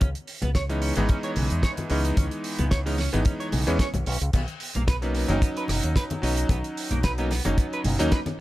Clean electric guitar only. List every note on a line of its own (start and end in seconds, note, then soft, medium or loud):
0.01 0.08 C#4 medium
0.42 0.49 B3 medium
0.55 0.63 C#5 medium
0.70 0.79 C#4 medium
0.82 0.93 C#4 medium
0.97 1.03 B3 medium
1.09 1.17 C#4 medium
1.24 1.30 C#5 medium
1.36 1.47 C#3 medium
1.63 1.71 C#5 medium
1.90 2.01 C#4 medium
2.17 2.25 C#4 medium
2.59 2.65 B3 medium
2.71 2.79 C#5 medium
2.86 2.95 C#4 medium
2.98 3.09 C#4 medium
3.12 3.19 B3 medium
3.25 3.33 C#4 medium
3.40 3.46 C#5 medium
3.53 3.64 C#3 medium
3.80 3.87 C#5 medium
4.07 4.18 C#4 medium
4.34 4.41 B3 medium
4.76 4.82 A#3 medium
4.88 4.95 B4 medium
5.03 5.12 B3 medium
5.16 5.26 B3 medium
5.30 5.36 A#3 medium
5.42 5.49 B3 medium
5.57 5.63 B4 medium
5.70 5.80 B2 medium
5.96 6.03 B4 medium
6.23 6.34 B3 medium
6.50 6.57 B3 medium
6.91 6.98 A#3 medium
7.04 7.11 B4 medium
7.19 7.28 B3 medium
7.31 7.42 B3 medium
7.46 7.52 A#3 medium
7.58 7.66 B3 medium
7.74 7.79 B4 medium
7.85 7.96 B2 medium
8.12 8.19 B4 medium